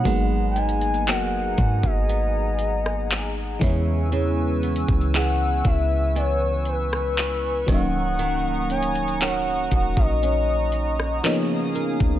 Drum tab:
HH |x---xxxxx---x---x---x---x---x---|x---xxxxx---x---x---x---x---x---|x---xxxxx---x---x---x---x---x---|
CP |--------x---------------x-------|--------x---------------x-------|--------x---------------x-------|
SD |----------------------r---------|----------------------r---------|----------------------r---------|
BD |o-----------o-o-------------o---|------o-----o---------------o---|------------o-o---------------o-|